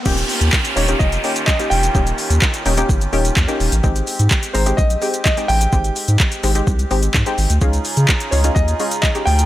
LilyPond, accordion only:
\new Staff \with { instrumentName = "Accordion" } { \time 4/4 \key ees \mixolydian \tempo 4 = 127 << { g'1~ | g'1~ | g'1~ | g'1 |
aes'1 | } \\ { <ees bes des' f'>1~ | <ees bes des' f'>1 | <aes c'>1~ | <aes c'>1 |
<des des' ees' f'>1 | } >> }